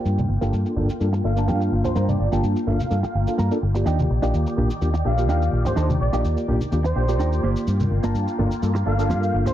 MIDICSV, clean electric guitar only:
0, 0, Header, 1, 3, 480
1, 0, Start_track
1, 0, Key_signature, -2, "minor"
1, 0, Tempo, 476190
1, 54, Time_signature, 4, 2, 24, 8
1, 9612, End_track
2, 0, Start_track
2, 0, Title_t, "Clean electric guitar"
2, 0, Program_c, 0, 27
2, 0, Note_on_c, 0, 58, 84
2, 0, Note_on_c, 0, 65, 75
2, 0, Note_on_c, 0, 67, 92
2, 202, Note_off_c, 0, 58, 0
2, 205, Note_off_c, 0, 65, 0
2, 208, Note_off_c, 0, 67, 0
2, 416, Note_on_c, 0, 58, 82
2, 422, Note_on_c, 0, 65, 75
2, 429, Note_on_c, 0, 67, 91
2, 531, Note_off_c, 0, 58, 0
2, 534, Note_off_c, 0, 65, 0
2, 537, Note_off_c, 0, 67, 0
2, 1489, Note_on_c, 0, 58, 84
2, 1495, Note_on_c, 0, 65, 73
2, 1502, Note_on_c, 0, 67, 89
2, 1620, Note_off_c, 0, 58, 0
2, 1623, Note_off_c, 0, 65, 0
2, 1627, Note_off_c, 0, 67, 0
2, 1969, Note_on_c, 0, 58, 109
2, 1975, Note_on_c, 0, 65, 100
2, 1982, Note_on_c, 0, 70, 112
2, 2100, Note_off_c, 0, 58, 0
2, 2103, Note_off_c, 0, 65, 0
2, 2107, Note_off_c, 0, 70, 0
2, 2337, Note_on_c, 0, 58, 82
2, 2343, Note_on_c, 0, 65, 74
2, 2349, Note_on_c, 0, 67, 92
2, 2452, Note_off_c, 0, 58, 0
2, 2454, Note_off_c, 0, 65, 0
2, 2457, Note_off_c, 0, 67, 0
2, 3409, Note_on_c, 0, 58, 79
2, 3414, Note_on_c, 0, 65, 74
2, 3420, Note_on_c, 0, 70, 91
2, 3540, Note_off_c, 0, 58, 0
2, 3543, Note_off_c, 0, 65, 0
2, 3546, Note_off_c, 0, 70, 0
2, 3888, Note_on_c, 0, 62, 108
2, 3894, Note_on_c, 0, 63, 99
2, 3901, Note_on_c, 0, 67, 114
2, 4020, Note_off_c, 0, 62, 0
2, 4023, Note_off_c, 0, 63, 0
2, 4026, Note_off_c, 0, 67, 0
2, 4256, Note_on_c, 0, 62, 83
2, 4263, Note_on_c, 0, 63, 73
2, 4269, Note_on_c, 0, 67, 91
2, 4371, Note_off_c, 0, 62, 0
2, 4374, Note_off_c, 0, 63, 0
2, 4378, Note_off_c, 0, 67, 0
2, 5330, Note_on_c, 0, 62, 81
2, 5334, Note_on_c, 0, 63, 78
2, 5341, Note_on_c, 0, 67, 90
2, 5461, Note_off_c, 0, 62, 0
2, 5463, Note_off_c, 0, 63, 0
2, 5466, Note_off_c, 0, 67, 0
2, 5806, Note_on_c, 0, 62, 104
2, 5812, Note_on_c, 0, 63, 102
2, 5819, Note_on_c, 0, 69, 117
2, 5939, Note_off_c, 0, 62, 0
2, 5942, Note_off_c, 0, 63, 0
2, 5945, Note_off_c, 0, 69, 0
2, 6176, Note_on_c, 0, 62, 80
2, 6182, Note_on_c, 0, 63, 73
2, 6188, Note_on_c, 0, 67, 89
2, 6291, Note_off_c, 0, 62, 0
2, 6294, Note_off_c, 0, 63, 0
2, 6297, Note_off_c, 0, 67, 0
2, 7251, Note_on_c, 0, 62, 87
2, 7256, Note_on_c, 0, 63, 78
2, 7261, Note_on_c, 0, 79, 59
2, 7263, Note_on_c, 0, 70, 93
2, 7381, Note_off_c, 0, 62, 0
2, 7384, Note_off_c, 0, 63, 0
2, 7387, Note_off_c, 0, 70, 0
2, 7479, Note_off_c, 0, 79, 0
2, 7491, Note_on_c, 0, 58, 85
2, 7496, Note_on_c, 0, 65, 78
2, 7499, Note_on_c, 0, 74, 57
2, 7503, Note_on_c, 0, 67, 97
2, 7719, Note_off_c, 0, 74, 0
2, 7883, Note_off_c, 0, 58, 0
2, 7887, Note_off_c, 0, 65, 0
2, 7890, Note_off_c, 0, 67, 0
2, 8099, Note_on_c, 0, 58, 85
2, 8105, Note_on_c, 0, 65, 76
2, 8112, Note_on_c, 0, 70, 95
2, 8213, Note_off_c, 0, 58, 0
2, 8216, Note_off_c, 0, 65, 0
2, 8219, Note_off_c, 0, 70, 0
2, 9169, Note_on_c, 0, 58, 85
2, 9175, Note_on_c, 0, 65, 79
2, 9180, Note_on_c, 0, 67, 92
2, 9300, Note_off_c, 0, 58, 0
2, 9303, Note_off_c, 0, 65, 0
2, 9306, Note_off_c, 0, 67, 0
2, 9612, End_track
3, 0, Start_track
3, 0, Title_t, "Muted clean electric guitar strokes"
3, 288, Note_on_c, 9, 29, 30
3, 389, Note_off_c, 9, 29, 0
3, 658, Note_on_c, 9, 29, 31
3, 759, Note_off_c, 9, 29, 0
3, 1136, Note_on_c, 9, 29, 102
3, 1237, Note_off_c, 9, 29, 0
3, 1250, Note_on_c, 9, 29, 30
3, 1351, Note_off_c, 9, 29, 0
3, 1729, Note_on_c, 9, 29, 31
3, 1830, Note_off_c, 9, 29, 0
3, 1857, Note_on_c, 9, 29, 79
3, 1958, Note_off_c, 9, 29, 0
3, 2211, Note_on_c, 9, 29, 30
3, 2312, Note_off_c, 9, 29, 0
3, 2575, Note_on_c, 9, 29, 29
3, 2676, Note_off_c, 9, 29, 0
3, 3056, Note_on_c, 9, 29, 105
3, 3157, Note_off_c, 9, 29, 0
3, 3170, Note_on_c, 9, 29, 30
3, 3271, Note_off_c, 9, 29, 0
3, 3647, Note_on_c, 9, 29, 29
3, 3748, Note_off_c, 9, 29, 0
3, 3775, Note_on_c, 9, 29, 79
3, 3876, Note_off_c, 9, 29, 0
3, 4128, Note_on_c, 9, 29, 31
3, 4229, Note_off_c, 9, 29, 0
3, 4498, Note_on_c, 9, 29, 29
3, 4599, Note_off_c, 9, 29, 0
3, 4977, Note_on_c, 9, 29, 99
3, 5078, Note_off_c, 9, 29, 0
3, 5089, Note_on_c, 9, 29, 31
3, 5190, Note_off_c, 9, 29, 0
3, 5568, Note_on_c, 9, 29, 30
3, 5668, Note_off_c, 9, 29, 0
3, 5695, Note_on_c, 9, 29, 78
3, 5796, Note_off_c, 9, 29, 0
3, 6047, Note_on_c, 9, 29, 32
3, 6148, Note_off_c, 9, 29, 0
3, 6418, Note_on_c, 9, 29, 30
3, 6519, Note_off_c, 9, 29, 0
3, 6897, Note_on_c, 9, 29, 108
3, 6998, Note_off_c, 9, 29, 0
3, 7011, Note_on_c, 9, 29, 31
3, 7112, Note_off_c, 9, 29, 0
3, 7972, Note_on_c, 9, 29, 31
3, 8073, Note_off_c, 9, 29, 0
3, 8338, Note_on_c, 9, 29, 31
3, 8439, Note_off_c, 9, 29, 0
3, 8818, Note_on_c, 9, 29, 105
3, 8919, Note_off_c, 9, 29, 0
3, 8930, Note_on_c, 9, 29, 30
3, 9031, Note_off_c, 9, 29, 0
3, 9408, Note_on_c, 9, 29, 31
3, 9509, Note_off_c, 9, 29, 0
3, 9536, Note_on_c, 9, 29, 79
3, 9612, Note_off_c, 9, 29, 0
3, 9612, End_track
0, 0, End_of_file